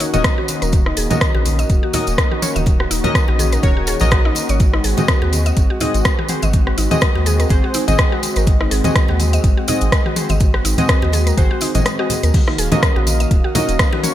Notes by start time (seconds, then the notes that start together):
Already playing: D#3 A#3 C#4 F#4 A#4 C#5 F5
0.00 D#4, open hi-hat, tambourine, muted conga
0.14 D#1 C#4 F#4 A#4 D#5, closed hi-hat, mid tom, tambourine, low conga
0.24 kick, cross-stick, closed hi-hat, tambourine, muted conga
0.38 F#4
0.48 open hi-hat, tambourine, muted conga
0.62 D#1 A#4, closed hi-hat, tambourine
0.72 D#4, kick, closed hi-hat, tambourine, muted conga, high conga
0.86 D#4, cross-stick
0.97 D#1 G#4, open hi-hat, tambourine
1.10 C#4 F#4 A#4 D#5, closed hi-hat, mid tom, tambourine, muted conga, high conga, low conga
1.21 A#4, kick, cross-stick, closed hi-hat, tambourine
1.35 A#1 F#4, muted conga
1.45 open hi-hat, tambourine, high conga
1.59 D#5, closed hi-hat, tambourine, muted conga
1.69 D#1, kick, closed hi-hat, tambourine
1.83 F#4
1.93 C#4 D#4 F#4 A#4 D#5, open hi-hat, tambourine, muted conga, high conga, low conga
2.07 D#1, closed hi-hat, tambourine
2.18 A#4, kick, cross-stick, closed hi-hat, tambourine, muted conga
2.32 F#4, mid tom
2.42 C#4 F#4 A#4 C#5, open hi-hat, mid tom, tambourine, muted conga
2.56 D#1 D#5, closed hi-hat, tambourine, high conga
2.66 kick, closed hi-hat, tambourine, muted conga, high conga
2.80 F#4, cross-stick
2.91 D#1 D#4, open hi-hat, tambourine
3.04 C#4 F#4 A#4 D#5, closed hi-hat, mid tom, tambourine, muted conga, high conga, low conga
3.15 A#4, kick, cross-stick, closed hi-hat, tambourine
3.28 A#1 F#4, muted conga
3.39 G#4, open hi-hat, tambourine, high conga
3.52 A#4, closed hi-hat, tambourine, muted conga
3.63 D#1 C#4 F#4 A#4 C#5, kick, closed hi-hat, tambourine, high conga
3.77 F#4
3.87 G#4, open hi-hat, tambourine, muted conga
4.00 A#1 C#4 F#4 A#4 D#5, closed hi-hat, mid tom, tambourine, low conga
4.12 F#4, kick, cross-stick, closed hi-hat
4.25 D#4
4.35 open hi-hat, tambourine, muted conga
4.49 G#1 C#5, closed hi-hat, tambourine
4.60 G#3 C4, kick, closed hi-hat, tambourine, muted conga, high conga
4.74 D#4, cross-stick
4.84 G#1 G#4, open hi-hat, tambourine
4.97 C4 F#4 G#4 D#5, closed hi-hat, mid tom, tambourine, muted conga, high conga, low conga
5.08 A#4, kick, cross-stick, closed hi-hat, tambourine
5.22 D#2 F#4, muted conga
5.33 open hi-hat, tambourine, high conga
5.46 D#5, closed hi-hat, tambourine, muted conga
5.57 G#1, kick, closed hi-hat, tambourine
5.70 F#4
5.80 C4 D#4 F#4 G#4 D#5, open hi-hat, tambourine, muted conga, high conga, low conga
5.94 G#1, closed hi-hat, tambourine
6.05 A#4, kick, cross-stick, closed hi-hat, tambourine, muted conga
6.19 F#4, mid tom
6.28 C4 F#4 G#4 C5, open hi-hat, mid tom, tambourine, muted conga
6.42 G#1 D#5, closed hi-hat, tambourine, high conga
6.53 kick, closed hi-hat, tambourine, muted conga, high conga
6.67 F#4, cross-stick
6.78 G#1 D#4, open hi-hat, tambourine
6.91 C4 F#4 G#4 D#5, closed hi-hat, mid tom, tambourine, muted conga, high conga, low conga
7.01 A#4, kick, cross-stick, closed hi-hat, tambourine
7.15 D#2 F#4, muted conga
7.26 G#4, open hi-hat, tambourine, high conga
7.40 A#4, closed hi-hat, tambourine, muted conga
7.49 G#1 C4 F#4 G#4 C5, kick, closed hi-hat, tambourine, high conga
7.64 F#4
7.74 D#4, open hi-hat, tambourine, muted conga
7.88 G#1 C4 F#4 G#4 D#5, closed hi-hat, mid tom, tambourine, low conga
7.98 kick, cross-stick, closed hi-hat, tambourine, muted conga
8.12 F#4
8.23 open hi-hat, tambourine, muted conga
8.36 G#1 A#4, closed hi-hat, tambourine
8.47 kick, closed hi-hat, tambourine, muted conga, high conga
8.61 D#4, cross-stick
8.71 G#1 G#4, open hi-hat, tambourine
8.84 C4 F#4 G#4 D#5, closed hi-hat, mid tom, tambourine, muted conga, high conga, low conga
8.95 A#4, kick, cross-stick, closed hi-hat, tambourine
9.08 D#2 F#4, muted conga
9.20 open hi-hat, tambourine, high conga
9.33 D#5, closed hi-hat, tambourine, muted conga
9.44 G#1, kick, closed hi-hat, tambourine
9.57 F#4
9.68 C4 D#4 F#4 G#4 D#5, open hi-hat, tambourine, muted conga, high conga, low conga
9.81 G#1, closed hi-hat, tambourine
9.92 A#4, kick, cross-stick, closed hi-hat, tambourine, muted conga
10.06 F#4, mid tom
10.16 C4 F#4 G#4 C5, open hi-hat, mid tom, tambourine, muted conga
10.29 G#1 D#5, closed hi-hat, tambourine, high conga
10.40 kick, closed hi-hat, tambourine, muted conga, high conga
10.54 F#4, cross-stick
10.65 G#1 D#4, open hi-hat, tambourine
10.78 C4 F#4 G#4 D#5, closed hi-hat, mid tom, tambourine, muted conga, high conga, low conga
10.89 A#4, kick, cross-stick, closed hi-hat, tambourine
11.02 D#2 F#4, muted conga
11.13 G#4, open hi-hat, tambourine, high conga
11.27 A#4, closed hi-hat, tambourine, muted conga
11.37 G#1 C4 F#4 G#4 C5, kick, closed hi-hat, tambourine, high conga
11.51 F#4
11.61 D#4, open hi-hat, tambourine, muted conga
11.75 G#1 C4 F#4 G#4 D#5, closed hi-hat, mid tom, tambourine, low conga
11.86 cross-stick, closed hi-hat, tambourine, muted conga
11.99 C4 F#4 G#4 D#5
12.10 open hi-hat, tambourine, muted conga, low conga
12.23 D#2 A#4, closed hi-hat, tambourine
12.34 D#3 A#3 F#4 F5, kick, closed hi-hat, crash, tambourine, muted conga, high conga
12.48 D#4, cross-stick, low bongo
12.58 D#1 G#4, open hi-hat, tambourine
12.72 C#4 F#4 A#4 D#5, closed hi-hat, mid tom, tambourine, high bongo, low bongo, muted conga, high conga, low conga
12.83 A#4, kick, cross-stick, closed hi-hat, tambourine
12.96 A#1 F#4, low bongo, muted conga
13.07 open hi-hat, tambourine, high conga
13.20 D#5, closed hi-hat, tambourine, muted conga
13.31 D#1, kick, closed hi-hat, tambourine, low bongo
13.44 F#4
13.55 C#4 D#4 F#4 A#4 D#5, open hi-hat, tambourine, high bongo, low bongo, muted conga, high conga, low conga
13.69 D#1, closed hi-hat, tambourine
13.79 A#4, kick, cross-stick, closed hi-hat, tambourine, low bongo, muted conga
13.93 F#4, mid tom, high bongo
14.03 C#4 F#4 A#4 C#5, open hi-hat, mid tom, tambourine, muted conga